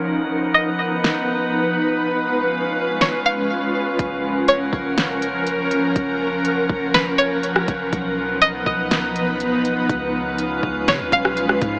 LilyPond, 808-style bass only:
\new Staff \with { instrumentName = "808-style bass" } { \clef bass \time 4/4 \key fis \major \tempo 4 = 122 r1 | r1 | fis,,4. fis,,2~ fis,,8 | fis,,4. fis,,2 fis,,8 |
b,,4. b,,2~ b,,8 | cis,4. cis,8 cis16 cis,16 b,,4 gis,8 | }